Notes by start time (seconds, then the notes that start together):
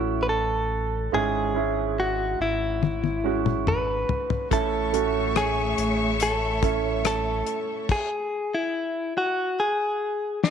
Already playing: A1 A3 C#4 E4 F#4
0.23 B4
0.29 A4
1.12 G#1 G#2 G#3 C#4 E4 G#4
1.54 G#3 C#4 E4
2.00 F#4
2.39 G#1 E4
2.83 high tom
3.04 high tom
3.24 G#3 C#4 F#4
3.46 mid tom
3.67 B4, mid tom
4.09 floor tom
4.30 floor tom
4.51 A1 A2 A3 C#4 E4 A4 C#5 E5 C#6, kick, closed hi-hat
4.93 A3 C#4 F#4, closed hi-hat
5.36 G#4, cross-stick, closed hi-hat
5.78 A1, closed hi-hat
6.20 A4, closed hi-hat
6.62 A3 C#4 E4, kick, closed hi-hat
7.05 A4, cross-stick, closed hi-hat
7.47 closed hi-hat
7.89 G#4, kick, crash
8.54 E4
9.18 F#4
9.60 G#4
10.43 E4, snare